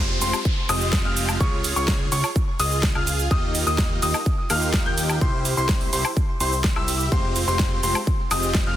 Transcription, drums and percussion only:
0.21 open hi-hat loud
0.21 shaker medium
0.33 high woodblock medium
0.33 shaker soft
0.45 kick loud
0.45 shaker soft
0.69 open hi-hat loud
0.69 high woodblock medium
0.69 shaker medium
0.81 shaker soft
0.93 kick loud
0.93 snare loud
0.93 shaker soft
1.17 open hi-hat loud
1.17 shaker medium
1.29 high woodblock medium
1.29 shaker soft
1.41 kick loud
1.41 shaker soft
1.64 open hi-hat loud
1.64 shaker medium
1.76 shaker soft
1.88 kick loud
1.88 snare loud
1.88 shaker soft
2.12 open hi-hat loud
2.12 shaker medium
2.24 high woodblock medium
2.24 shaker soft
2.36 kick loud
2.36 shaker soft
2.60 open hi-hat loud
2.60 shaker medium
2.72 shaker soft
2.83 kick loud
2.83 snare loud
2.83 shaker soft
2.95 high woodblock medium
3.07 open hi-hat loud
3.07 shaker medium
3.19 shaker soft
3.31 kick loud
3.31 shaker soft
3.55 open hi-hat loud
3.55 shaker medium
3.67 shaker soft
3.78 kick loud
3.78 snare loud
3.78 shaker soft
4.02 open hi-hat loud
4.02 shaker medium
4.14 high woodblock medium
4.14 shaker soft
4.26 kick loud
4.26 shaker soft
4.50 open hi-hat loud
4.50 high woodblock medium
4.50 shaker medium
4.62 shaker soft
4.74 kick loud
4.74 snare loud
4.74 shaker soft
4.98 open hi-hat loud
4.98 shaker medium
5.10 high woodblock medium
5.10 shaker soft
5.21 kick loud
5.21 shaker soft
5.45 open hi-hat loud
5.45 shaker medium
5.57 shaker soft
5.69 kick loud
5.69 snare loud
5.69 shaker soft
5.81 open hi-hat medium
5.93 open hi-hat loud
5.93 shaker medium
6.05 high woodblock medium
6.05 shaker soft
6.17 kick loud
6.17 shaker soft
6.40 open hi-hat loud
6.40 shaker medium
6.52 shaker soft
6.64 kick loud
6.64 snare loud
6.64 shaker soft
6.76 high woodblock medium
6.88 open hi-hat loud
6.88 shaker medium
7.00 shaker soft
7.12 kick loud
7.12 shaker soft
7.36 open hi-hat loud
7.36 shaker medium
7.48 shaker soft
7.59 kick loud
7.59 snare loud
7.59 shaker soft
7.83 open hi-hat loud
7.83 shaker medium
7.95 high woodblock medium
7.95 shaker soft
8.07 kick loud
8.07 shaker soft
8.31 open hi-hat loud
8.31 high woodblock medium
8.31 shaker medium
8.43 shaker soft
8.54 kick loud
8.54 snare loud
8.54 shaker soft

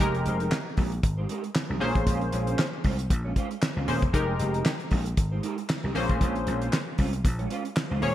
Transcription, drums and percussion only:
0.00 kick loud
0.00 closed hi-hat medium
0.15 closed hi-hat soft
0.26 closed hi-hat medium
0.40 closed hi-hat soft
0.51 snare loud
0.51 clap medium
0.77 kick loud
0.77 open hi-hat medium
0.92 closed hi-hat medium
1.03 kick loud
1.03 closed hi-hat loud
1.29 closed hi-hat medium
1.44 closed hi-hat soft
1.55 snare loud
1.55 clap medium
1.81 open hi-hat medium
1.95 kick loud
1.95 closed hi-hat soft
2.07 kick loud
2.07 closed hi-hat loud
2.21 closed hi-hat soft
2.33 closed hi-hat medium
2.47 closed hi-hat medium
2.59 snare loud
2.59 clap medium
2.84 kick medium
2.84 open hi-hat medium
2.99 closed hi-hat medium
3.10 kick loud
3.10 closed hi-hat loud
3.36 kick medium
3.36 closed hi-hat medium
3.51 closed hi-hat soft
3.62 snare loud
3.62 clap medium
3.88 open hi-hat medium
4.02 kick loud
4.02 closed hi-hat medium
4.14 kick loud
4.14 closed hi-hat medium
4.39 closed hi-hat medium
4.54 closed hi-hat soft
4.65 snare loud
4.65 clap medium
4.80 closed hi-hat soft
4.91 kick medium
4.91 open hi-hat medium
5.06 closed hi-hat medium
5.17 kick loud
5.17 closed hi-hat loud
5.43 closed hi-hat medium
5.58 closed hi-hat soft
5.69 snare loud
5.69 clap medium
5.95 open hi-hat medium
6.09 kick medium
6.09 closed hi-hat medium
6.21 kick loud
6.21 closed hi-hat medium
6.35 closed hi-hat soft
6.47 closed hi-hat medium
6.62 closed hi-hat medium
6.73 snare medium
6.73 clap medium
6.98 kick medium
6.98 open hi-hat medium
7.13 closed hi-hat medium
7.25 kick loud
7.25 closed hi-hat loud
7.39 closed hi-hat soft
7.50 closed hi-hat medium
7.65 closed hi-hat soft
7.76 snare loud
7.76 clap medium
8.02 open hi-hat medium

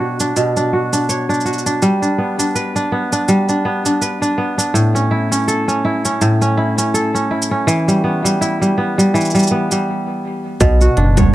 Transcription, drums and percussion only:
0.20 shaker medium
0.36 shaker soft
0.57 shaker soft
0.93 shaker medium
1.09 shaker soft
1.30 shaker soft
1.34 shaker soft
1.41 shaker soft
1.46 shaker soft
1.53 shaker soft
1.58 shaker soft
1.66 shaker medium
1.82 shaker soft
2.03 shaker soft
2.40 shaker medium
2.56 shaker soft
2.76 shaker soft
3.13 shaker medium
3.28 shaker soft
3.49 shaker soft
3.86 shaker medium
4.02 shaker medium
4.23 shaker soft
4.59 shaker medium
4.75 shaker soft
4.96 shaker soft
5.32 shaker medium
5.49 shaker soft
5.69 shaker soft
6.05 shaker medium
6.21 shaker soft
6.42 shaker soft
6.78 shaker medium
6.95 shaker medium
7.16 shaker soft
7.42 shaker medium
7.68 shaker soft
7.89 shaker soft
8.26 shaker medium
8.42 shaker medium
8.62 shaker soft
8.99 shaker medium
9.15 shaker soft
9.21 shaker soft
9.25 shaker soft
9.30 shaker soft
9.35 shaker soft
9.39 shaker soft
9.43 shaker soft
9.47 shaker soft
9.71 shaker medium
10.61 kick loud
10.61 closed hi-hat medium
10.61 shaker medium
10.81 shaker soft
10.97 closed hi-hat soft
11.17 kick loud
11.17 closed hi-hat soft
11.17 low conga medium
11.17 shaker medium

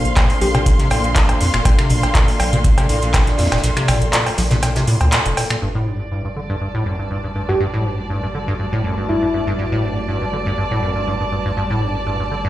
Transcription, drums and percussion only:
0.05 closed hi-hat soft
0.16 kick loud
0.16 snare loud
0.16 clap loud
0.16 closed hi-hat medium
0.16 cowbell medium
0.29 closed hi-hat soft
0.29 open hi-hat medium
0.41 closed hi-hat medium
0.41 open hi-hat loud
0.55 closed hi-hat soft
0.55 mid tom medium
0.55 cowbell medium
0.66 kick loud
0.66 closed hi-hat medium
0.79 snare soft
0.79 closed hi-hat soft
0.90 closed hi-hat medium
0.90 open hi-hat loud
0.90 cowbell medium
1.04 closed hi-hat soft
1.15 kick loud
1.15 snare loud
1.15 clap loud
1.15 closed hi-hat medium
1.29 closed hi-hat soft
1.29 cowbell medium
1.41 snare medium
1.41 closed hi-hat medium
1.41 open hi-hat loud
1.54 finger snap medium
1.54 closed hi-hat soft
1.65 kick loud
1.65 closed hi-hat loud
1.65 closed hi-hat medium
1.65 cowbell medium
1.79 finger snap medium
1.79 closed hi-hat soft
1.90 closed hi-hat medium
1.90 open hi-hat loud
1.90 mid tom medium
2.03 snare soft
2.03 closed hi-hat soft
2.03 cowbell medium
2.15 kick loud
2.15 snare loud
2.15 clap loud
2.15 closed hi-hat medium
2.28 closed hi-hat soft
2.28 open hi-hat medium
2.40 closed hi-hat medium
2.40 open hi-hat loud
2.40 cowbell medium
2.53 closed hi-hat soft
2.53 mid tom medium
2.64 kick loud
2.64 closed hi-hat medium
2.78 closed hi-hat soft
2.78 cowbell medium
2.89 closed hi-hat medium
2.89 open hi-hat loud
3.02 closed hi-hat soft
3.14 kick loud
3.14 snare loud
3.14 clap loud
3.14 closed hi-hat medium
3.14 cowbell medium
3.27 snare medium
3.27 closed hi-hat soft
3.38 snare loud
3.38 closed hi-hat medium
3.38 open hi-hat loud
3.45 snare medium
3.45 closed hi-hat medium
3.52 finger snap medium
3.52 snare medium
3.52 closed hi-hat soft
3.52 closed hi-hat medium
3.52 cowbell medium
3.58 snare medium
3.58 closed hi-hat medium
3.64 closed hi-hat loud
3.64 closed hi-hat medium
3.77 finger snap medium
3.77 closed hi-hat soft
3.88 finger snap medium
3.88 closed hi-hat medium
3.88 open hi-hat loud
3.88 mid tom medium
3.88 cowbell medium
4.02 closed hi-hat soft
4.13 snare loud
4.13 clap loud
4.13 closed hi-hat medium
4.26 closed hi-hat soft
4.26 open hi-hat medium
4.26 cowbell medium
4.38 snare loud
4.38 closed hi-hat medium
4.38 open hi-hat loud
4.51 snare loud
4.51 closed hi-hat medium
4.51 closed hi-hat soft
4.51 mid tom medium
4.62 snare loud
4.62 closed hi-hat medium
4.62 closed hi-hat loud
4.62 cowbell medium
4.76 snare loud
4.76 closed hi-hat soft
4.76 closed hi-hat medium
4.87 closed hi-hat medium
4.87 open hi-hat loud
5.01 closed hi-hat soft
5.01 cowbell medium
5.12 snare loud
5.12 clap loud
5.12 closed hi-hat loud
5.12 closed hi-hat medium
5.26 closed hi-hat soft
5.37 snare medium
5.37 closed hi-hat medium
5.37 open hi-hat loud
5.37 cowbell medium
5.50 finger snap medium
5.50 closed hi-hat soft
6.00 closed hi-hat medium
6.12 closed hi-hat medium
6.25 closed hi-hat soft
6.61 closed hi-hat medium
6.99 closed hi-hat medium
7.11 closed hi-hat medium
7.60 closed hi-hat medium
7.98 closed hi-hat soft
8.10 closed hi-hat medium
8.23 closed hi-hat soft
8.60 closed hi-hat medium
8.98 closed hi-hat medium
9.09 closed hi-hat medium
9.47 closed hi-hat soft
9.59 closed hi-hat medium
9.97 closed hi-hat soft
10.08 closed hi-hat medium
10.22 closed hi-hat soft
10.46 closed hi-hat soft
10.58 closed hi-hat medium
10.96 closed hi-hat soft
11.08 closed hi-hat medium
11.45 closed hi-hat soft
11.57 closed hi-hat medium
11.70 closed hi-hat soft
11.95 closed hi-hat soft
12.07 closed hi-hat medium
12.20 closed hi-hat soft
12.45 closed hi-hat soft

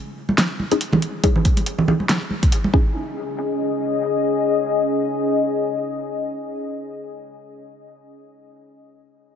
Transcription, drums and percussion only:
0.29 high conga medium
0.38 snare loud
0.38 closed hi-hat medium
0.60 high conga medium
0.71 closed hi-hat soft
0.81 closed hi-hat medium
0.93 high conga medium
0.93 low conga medium
1.02 closed hi-hat soft
1.24 kick loud
1.24 closed hi-hat medium
1.24 high conga medium
1.36 low conga medium
1.45 kick loud
1.45 closed hi-hat medium
1.57 closed hi-hat medium
1.57 high conga medium
1.66 closed hi-hat medium
1.78 low conga medium
1.88 low conga medium
2.00 high conga medium
2.09 snare loud
2.09 closed hi-hat medium
2.30 high conga medium
2.43 kick medium
2.43 closed hi-hat medium
2.52 closed hi-hat medium
2.64 high conga medium
2.74 kick loud

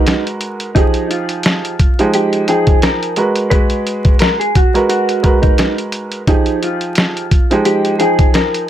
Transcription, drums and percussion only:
0.07 snare loud
0.07 closed hi-hat medium
0.27 closed hi-hat soft
0.41 closed hi-hat medium
0.60 closed hi-hat medium
0.76 kick loud
0.76 closed hi-hat loud
0.94 closed hi-hat medium
1.11 closed hi-hat medium
1.29 closed hi-hat soft
1.43 snare loud
1.43 closed hi-hat medium
1.65 closed hi-hat soft
1.79 kick medium
1.79 closed hi-hat medium
1.99 closed hi-hat medium
2.14 closed hi-hat medium
2.33 closed hi-hat soft
2.48 closed hi-hat medium
2.67 kick loud
2.67 closed hi-hat medium
2.82 snare loud
2.82 closed hi-hat medium
3.03 closed hi-hat soft
3.16 closed hi-hat medium
3.36 closed hi-hat medium
3.51 kick loud
3.51 closed hi-hat medium
3.70 closed hi-hat medium
3.87 closed hi-hat medium
4.05 kick loud
4.05 closed hi-hat medium
4.19 snare loud
4.19 closed hi-hat medium
4.41 closed hi-hat soft
4.55 kick medium
4.55 closed hi-hat medium
4.75 closed hi-hat medium
4.90 closed hi-hat medium
5.09 closed hi-hat soft
5.24 kick medium
5.24 closed hi-hat medium
5.43 kick loud
5.43 closed hi-hat medium
5.58 snare loud
5.58 closed hi-hat medium
5.78 closed hi-hat soft
5.92 closed hi-hat medium
6.12 closed hi-hat medium
6.27 kick loud
6.27 closed hi-hat loud
6.46 closed hi-hat medium
6.63 closed hi-hat medium
6.81 closed hi-hat soft
6.95 snare loud
6.95 closed hi-hat medium
7.17 closed hi-hat soft
7.31 kick medium
7.31 closed hi-hat medium
7.51 closed hi-hat medium
7.65 closed hi-hat medium
7.85 closed hi-hat soft
8.00 closed hi-hat medium
8.19 kick loud
8.19 closed hi-hat medium
8.34 snare loud
8.34 closed hi-hat medium
8.54 closed hi-hat soft

